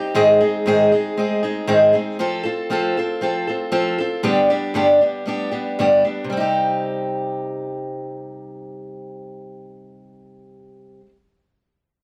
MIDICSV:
0, 0, Header, 1, 2, 480
1, 0, Start_track
1, 0, Key_signature, -3, "minor"
1, 0, Tempo, 512383
1, 145, Time_signature, 4, 2, 24, 8
1, 11270, End_track
2, 0, Start_track
2, 0, Title_t, "Steel-string acoustic guitar"
2, 0, Program_c, 0, 25
2, 0, Note_on_c, 0, 60, 50
2, 0, Note_on_c, 0, 63, 44
2, 0, Note_on_c, 0, 67, 57
2, 136, Note_on_c, 0, 44, 84
2, 137, Note_off_c, 0, 60, 0
2, 138, Note_off_c, 0, 67, 0
2, 139, Note_off_c, 0, 63, 0
2, 141, Note_on_c, 0, 51, 91
2, 143, Note_on_c, 0, 56, 87
2, 148, Note_on_c, 0, 60, 77
2, 150, Note_on_c, 0, 63, 86
2, 152, Note_on_c, 0, 68, 93
2, 368, Note_off_c, 0, 68, 0
2, 372, Note_off_c, 0, 63, 0
2, 379, Note_off_c, 0, 44, 0
2, 379, Note_on_c, 0, 68, 61
2, 382, Note_off_c, 0, 51, 0
2, 382, Note_off_c, 0, 56, 0
2, 383, Note_on_c, 0, 63, 54
2, 385, Note_off_c, 0, 60, 0
2, 397, Note_on_c, 0, 56, 46
2, 399, Note_on_c, 0, 60, 46
2, 615, Note_on_c, 0, 44, 81
2, 616, Note_off_c, 0, 56, 0
2, 618, Note_off_c, 0, 60, 0
2, 620, Note_off_c, 0, 68, 0
2, 622, Note_off_c, 0, 63, 0
2, 627, Note_on_c, 0, 56, 88
2, 629, Note_on_c, 0, 60, 74
2, 631, Note_on_c, 0, 51, 76
2, 637, Note_on_c, 0, 63, 78
2, 639, Note_on_c, 0, 68, 97
2, 851, Note_off_c, 0, 68, 0
2, 858, Note_off_c, 0, 44, 0
2, 862, Note_on_c, 0, 68, 56
2, 864, Note_off_c, 0, 56, 0
2, 864, Note_off_c, 0, 60, 0
2, 865, Note_off_c, 0, 51, 0
2, 865, Note_off_c, 0, 63, 0
2, 876, Note_on_c, 0, 63, 51
2, 885, Note_on_c, 0, 56, 36
2, 885, Note_on_c, 0, 60, 43
2, 1088, Note_off_c, 0, 56, 0
2, 1090, Note_off_c, 0, 60, 0
2, 1100, Note_on_c, 0, 56, 61
2, 1101, Note_off_c, 0, 63, 0
2, 1101, Note_off_c, 0, 68, 0
2, 1101, Note_on_c, 0, 60, 66
2, 1112, Note_on_c, 0, 63, 70
2, 1118, Note_on_c, 0, 68, 77
2, 1327, Note_off_c, 0, 68, 0
2, 1338, Note_off_c, 0, 63, 0
2, 1338, Note_on_c, 0, 68, 48
2, 1339, Note_off_c, 0, 56, 0
2, 1339, Note_off_c, 0, 60, 0
2, 1349, Note_on_c, 0, 63, 52
2, 1354, Note_on_c, 0, 60, 46
2, 1362, Note_on_c, 0, 56, 41
2, 1559, Note_off_c, 0, 56, 0
2, 1565, Note_off_c, 0, 68, 0
2, 1568, Note_off_c, 0, 60, 0
2, 1569, Note_off_c, 0, 63, 0
2, 1569, Note_on_c, 0, 51, 79
2, 1570, Note_on_c, 0, 56, 77
2, 1573, Note_on_c, 0, 44, 82
2, 1577, Note_on_c, 0, 68, 82
2, 1579, Note_on_c, 0, 60, 85
2, 1581, Note_on_c, 0, 63, 86
2, 1795, Note_off_c, 0, 68, 0
2, 1805, Note_off_c, 0, 63, 0
2, 1806, Note_on_c, 0, 68, 50
2, 1812, Note_off_c, 0, 51, 0
2, 1813, Note_off_c, 0, 56, 0
2, 1814, Note_off_c, 0, 60, 0
2, 1815, Note_off_c, 0, 44, 0
2, 1816, Note_on_c, 0, 63, 47
2, 1826, Note_on_c, 0, 60, 52
2, 1827, Note_on_c, 0, 56, 38
2, 2045, Note_off_c, 0, 60, 0
2, 2049, Note_off_c, 0, 56, 0
2, 2051, Note_off_c, 0, 68, 0
2, 2052, Note_on_c, 0, 53, 77
2, 2056, Note_off_c, 0, 63, 0
2, 2056, Note_on_c, 0, 60, 74
2, 2065, Note_on_c, 0, 69, 100
2, 2071, Note_on_c, 0, 65, 78
2, 2269, Note_off_c, 0, 69, 0
2, 2280, Note_on_c, 0, 69, 60
2, 2286, Note_off_c, 0, 65, 0
2, 2293, Note_off_c, 0, 53, 0
2, 2295, Note_off_c, 0, 60, 0
2, 2297, Note_on_c, 0, 65, 55
2, 2306, Note_on_c, 0, 60, 47
2, 2523, Note_off_c, 0, 60, 0
2, 2527, Note_off_c, 0, 69, 0
2, 2528, Note_on_c, 0, 53, 65
2, 2531, Note_off_c, 0, 65, 0
2, 2534, Note_on_c, 0, 60, 78
2, 2542, Note_on_c, 0, 65, 85
2, 2555, Note_on_c, 0, 69, 92
2, 2771, Note_off_c, 0, 53, 0
2, 2774, Note_off_c, 0, 60, 0
2, 2774, Note_off_c, 0, 69, 0
2, 2778, Note_off_c, 0, 65, 0
2, 2785, Note_on_c, 0, 69, 51
2, 2798, Note_on_c, 0, 65, 51
2, 2806, Note_on_c, 0, 60, 44
2, 3005, Note_off_c, 0, 60, 0
2, 3008, Note_on_c, 0, 53, 55
2, 3016, Note_off_c, 0, 65, 0
2, 3017, Note_on_c, 0, 60, 67
2, 3019, Note_off_c, 0, 69, 0
2, 3027, Note_on_c, 0, 65, 62
2, 3030, Note_on_c, 0, 69, 64
2, 3243, Note_off_c, 0, 69, 0
2, 3250, Note_off_c, 0, 53, 0
2, 3254, Note_on_c, 0, 69, 52
2, 3255, Note_off_c, 0, 60, 0
2, 3256, Note_off_c, 0, 65, 0
2, 3267, Note_on_c, 0, 65, 42
2, 3277, Note_on_c, 0, 60, 45
2, 3473, Note_off_c, 0, 60, 0
2, 3476, Note_off_c, 0, 65, 0
2, 3482, Note_off_c, 0, 69, 0
2, 3482, Note_on_c, 0, 53, 81
2, 3484, Note_on_c, 0, 60, 76
2, 3487, Note_on_c, 0, 65, 91
2, 3493, Note_on_c, 0, 69, 74
2, 3721, Note_off_c, 0, 69, 0
2, 3727, Note_off_c, 0, 53, 0
2, 3728, Note_off_c, 0, 60, 0
2, 3729, Note_off_c, 0, 65, 0
2, 3732, Note_on_c, 0, 69, 52
2, 3750, Note_on_c, 0, 65, 51
2, 3756, Note_on_c, 0, 60, 40
2, 3963, Note_on_c, 0, 43, 68
2, 3964, Note_off_c, 0, 65, 0
2, 3967, Note_on_c, 0, 55, 81
2, 3968, Note_on_c, 0, 50, 78
2, 3968, Note_on_c, 0, 62, 85
2, 3972, Note_off_c, 0, 69, 0
2, 3973, Note_off_c, 0, 60, 0
2, 3976, Note_on_c, 0, 67, 85
2, 3977, Note_on_c, 0, 59, 79
2, 4205, Note_off_c, 0, 67, 0
2, 4207, Note_off_c, 0, 43, 0
2, 4207, Note_off_c, 0, 62, 0
2, 4209, Note_off_c, 0, 55, 0
2, 4210, Note_off_c, 0, 50, 0
2, 4214, Note_off_c, 0, 59, 0
2, 4216, Note_on_c, 0, 67, 62
2, 4218, Note_on_c, 0, 62, 51
2, 4229, Note_on_c, 0, 55, 45
2, 4229, Note_on_c, 0, 59, 45
2, 4435, Note_off_c, 0, 55, 0
2, 4440, Note_on_c, 0, 43, 66
2, 4443, Note_off_c, 0, 59, 0
2, 4447, Note_on_c, 0, 55, 70
2, 4448, Note_off_c, 0, 67, 0
2, 4451, Note_on_c, 0, 50, 69
2, 4452, Note_off_c, 0, 62, 0
2, 4454, Note_on_c, 0, 59, 78
2, 4460, Note_on_c, 0, 67, 79
2, 4463, Note_on_c, 0, 62, 82
2, 4684, Note_off_c, 0, 62, 0
2, 4684, Note_off_c, 0, 67, 0
2, 4686, Note_off_c, 0, 43, 0
2, 4689, Note_off_c, 0, 55, 0
2, 4691, Note_off_c, 0, 50, 0
2, 4691, Note_off_c, 0, 59, 0
2, 4695, Note_on_c, 0, 62, 45
2, 4695, Note_on_c, 0, 67, 50
2, 4702, Note_on_c, 0, 59, 39
2, 4707, Note_on_c, 0, 55, 42
2, 4913, Note_off_c, 0, 55, 0
2, 4924, Note_off_c, 0, 59, 0
2, 4924, Note_on_c, 0, 55, 64
2, 4934, Note_off_c, 0, 62, 0
2, 4934, Note_off_c, 0, 67, 0
2, 4935, Note_on_c, 0, 59, 68
2, 4944, Note_on_c, 0, 62, 72
2, 4951, Note_on_c, 0, 67, 77
2, 5155, Note_off_c, 0, 67, 0
2, 5163, Note_off_c, 0, 59, 0
2, 5163, Note_off_c, 0, 62, 0
2, 5166, Note_on_c, 0, 67, 48
2, 5168, Note_off_c, 0, 55, 0
2, 5174, Note_on_c, 0, 62, 44
2, 5175, Note_on_c, 0, 59, 50
2, 5192, Note_on_c, 0, 55, 41
2, 5410, Note_off_c, 0, 55, 0
2, 5410, Note_off_c, 0, 67, 0
2, 5413, Note_off_c, 0, 62, 0
2, 5414, Note_off_c, 0, 59, 0
2, 5422, Note_on_c, 0, 55, 68
2, 5424, Note_on_c, 0, 50, 69
2, 5428, Note_on_c, 0, 43, 76
2, 5431, Note_on_c, 0, 59, 80
2, 5432, Note_on_c, 0, 62, 85
2, 5441, Note_on_c, 0, 67, 76
2, 5650, Note_off_c, 0, 67, 0
2, 5653, Note_off_c, 0, 62, 0
2, 5657, Note_off_c, 0, 55, 0
2, 5659, Note_off_c, 0, 50, 0
2, 5660, Note_off_c, 0, 59, 0
2, 5661, Note_off_c, 0, 43, 0
2, 5661, Note_on_c, 0, 67, 48
2, 5665, Note_on_c, 0, 62, 48
2, 5671, Note_on_c, 0, 59, 44
2, 5682, Note_on_c, 0, 55, 40
2, 5849, Note_on_c, 0, 48, 67
2, 5888, Note_off_c, 0, 55, 0
2, 5897, Note_off_c, 0, 67, 0
2, 5899, Note_off_c, 0, 62, 0
2, 5899, Note_on_c, 0, 55, 68
2, 5902, Note_off_c, 0, 59, 0
2, 5925, Note_on_c, 0, 60, 80
2, 5968, Note_on_c, 0, 63, 77
2, 5998, Note_on_c, 0, 67, 77
2, 10310, Note_off_c, 0, 48, 0
2, 10360, Note_off_c, 0, 55, 0
2, 10386, Note_off_c, 0, 60, 0
2, 10428, Note_off_c, 0, 63, 0
2, 10458, Note_off_c, 0, 67, 0
2, 11270, End_track
0, 0, End_of_file